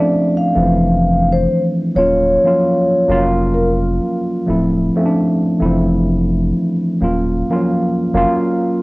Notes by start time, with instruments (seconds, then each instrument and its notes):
Already playing: tine electric piano F3 A3 C4 C#4 E4, vibraphone D5
0.00 tine electric piano D4
0.37 vibraphone F5
0.54 sub bass F1, tine electric piano E3 A3 C4
0.60 tine electric piano F3
1.32 vibraphone C5
1.95 sub bass D#1, tine electric piano F#3 A#3 C#4 F4, vibraphone C#5
2.44 tine electric piano F3 A#3 C#4 F4
2.50 tine electric piano F#3
3.08 sub bass F1, tine electric piano F#3 A#3 C#4 F4
3.54 vibraphone A#4
4.46 sub bass D1, tine electric piano F3 A3 C4 E4
4.96 tine electric piano F3 A3 C4 C#4
5.06 tine electric piano D4
5.59 sub bass F1, tine electric piano E3 A3 C4 E4
5.66 tine electric piano F3
7.01 sub bass D#1, tine electric piano F#3 A#3 C#4 F4
7.49 tine electric piano F3 A#3 C#4 F4
7.56 tine electric piano F#3
8.14 sub bass F1, tine electric piano F#3 A#3 C#4 F4